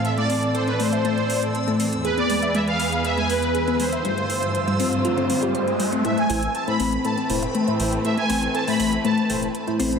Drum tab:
HH |xxoxxxoxxxoxxxox|xxoxxxoxxxoxxxox|xxoxxxoxxxoxxxox|xxoxxxoxxxoxxxox|

HH |xxoxxooxxxoxxxox|